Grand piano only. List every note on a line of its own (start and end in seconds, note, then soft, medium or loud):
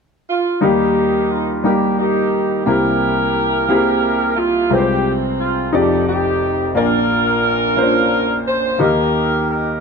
0.61 2.62 D#2 soft
0.61 2.62 D#3 soft
0.61 1.31 G3 medium
0.61 1.31 A#3 medium
0.61 1.31 D#4 medium
0.61 1.32 G4 medium
0.61 1.32 A#4 medium
1.64 2.33 G3 medium
1.64 2.34 A#3 soft
1.64 2.34 D#4 soft
1.64 2.34 G4 soft
1.64 2.35 A#4 medium
2.66 4.67 C2 soft
2.66 4.67 C3 medium
2.66 3.36 A#3 medium
2.66 3.36 C4 soft
2.66 3.36 E4 medium
2.66 3.36 G4 medium
2.66 3.37 A#4 medium
3.69 4.38 A#3 medium
3.69 4.38 C4 medium
3.69 4.38 E4 medium
3.69 4.39 G4 medium
3.69 3.76 G#4 medium
3.76 4.42 A#4 medium
4.70 5.68 C2 soft
4.70 5.69 C3 soft
4.70 5.40 G#3 medium
4.70 5.40 C4 medium
4.70 5.40 F4 medium
4.70 4.77 B4 soft
4.78 5.44 C5 medium
5.73 6.71 F1 soft
5.73 6.71 F2 soft
5.73 6.42 D#4 soft
5.73 6.42 F4 soft
5.73 6.43 G4 soft
5.73 5.80 G#4 soft
5.73 6.43 D5 medium
5.81 6.46 A4 soft
6.75 8.76 A#1 soft
6.75 8.76 A#2 soft
6.75 7.45 A#3 medium
6.75 7.45 D4 soft
6.75 7.45 F4 soft
6.75 7.45 A#4 medium
6.75 7.46 D5 medium
7.77 8.47 A#3 medium
7.77 7.83 C#4 soft
7.77 8.47 F4 medium
7.77 8.47 A#4 medium
7.77 8.48 C5 medium
7.83 8.50 D4 soft
8.79 9.78 D#2 soft
8.79 9.78 D#3 soft
8.79 9.49 A#3 medium
8.79 9.49 D#4 soft
8.79 9.49 G4 soft
8.79 9.50 A#4 medium
8.79 9.50 D#5 medium